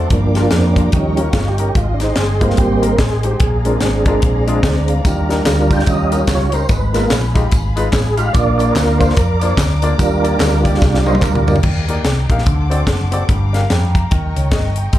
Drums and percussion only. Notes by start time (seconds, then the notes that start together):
0.10 kick, closed hi-hat
0.35 snare, closed hi-hat
0.51 snare, closed hi-hat
0.76 kick, closed hi-hat
0.92 kick, closed hi-hat
1.17 closed hi-hat
1.33 kick, snare, closed hi-hat
1.58 closed hi-hat
1.75 kick, closed hi-hat
2.00 snare, closed hi-hat
2.16 snare, closed hi-hat
2.41 kick, closed hi-hat
2.50 snare
2.57 kick, closed hi-hat
2.83 closed hi-hat
2.98 kick, snare, closed hi-hat
3.23 closed hi-hat
3.40 kick, closed hi-hat
3.65 closed hi-hat
3.81 snare, closed hi-hat
4.06 kick, closed hi-hat
4.22 kick, closed hi-hat
4.48 closed hi-hat
4.63 kick, snare, closed hi-hat
4.88 closed hi-hat
5.05 kick, closed hi-hat, tambourine
5.30 snare, closed hi-hat, tambourine
5.46 snare, clap, closed hi-hat, tambourine
5.71 kick, closed hi-hat, tambourine
5.79 snare
5.86 kick, closed hi-hat, tambourine
6.12 closed hi-hat, tambourine
6.27 kick, snare, clap, closed hi-hat, tambourine
6.52 closed hi-hat, tambourine
6.69 kick, closed hi-hat, tambourine
6.94 snare, closed hi-hat, tambourine
7.10 snare, clap, closed hi-hat, tambourine
7.36 kick, closed hi-hat, tambourine
7.51 kick, closed hi-hat, tambourine
7.77 closed hi-hat, tambourine
7.93 kick, snare, clap, closed hi-hat, tambourine
8.18 closed hi-hat, tambourine
8.34 kick, closed hi-hat, tambourine
8.59 closed hi-hat, tambourine
8.76 snare, clap, closed hi-hat, tambourine
9.00 kick, closed hi-hat, tambourine
9.10 snare
9.17 kick, closed hi-hat, tambourine
9.41 closed hi-hat, tambourine
9.57 kick, snare, clap, closed hi-hat, tambourine
9.82 closed hi-hat, tambourine
9.99 kick, closed hi-hat, tambourine
10.24 closed hi-hat, tambourine
10.40 snare, clap, closed hi-hat, tambourine
10.65 kick, closed hi-hat, tambourine
10.74 snare
10.81 kick, snare, tambourine
10.94 snare
11.06 high tom, tambourine
11.15 high tom
11.22 kick, clap, mid tom, tambourine
11.35 mid tom
11.47 floor tom, tambourine
11.56 floor tom
11.63 kick, crash
11.89 closed hi-hat
12.05 snare, closed hi-hat
12.30 kick, closed hi-hat
12.38 snare
12.46 kick, closed hi-hat
12.71 closed hi-hat
12.87 kick, snare, closed hi-hat
13.12 closed hi-hat
13.29 kick, closed hi-hat
13.54 snare, closed hi-hat
13.70 snare, closed hi-hat
13.95 kick, closed hi-hat
14.11 kick, closed hi-hat
14.36 closed hi-hat
14.51 kick, snare, closed hi-hat
14.76 closed hi-hat
14.93 kick, closed hi-hat